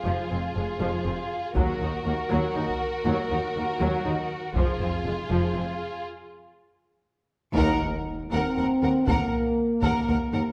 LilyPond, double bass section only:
\new Staff \with { instrumentName = "Double bass section" } { \clef bass \time 6/8 \key ees \dorian \tempo 4. = 80 f,,8 f,,8 f,,8 f,,8 f,,8 r8 | ees,8 ees,8 ees,8 ees,8 ees,8 r8 | ees,8 ees,8 ees,8 ees,8 ees,8 r8 | f,,8 f,,8 f,,8 f,,8 f,,8 r8 |
r2. | ees,8 r4 ees,8 ees,8 ees,8 | ees,8 r4 ees,8 ees,8 ees,8 | }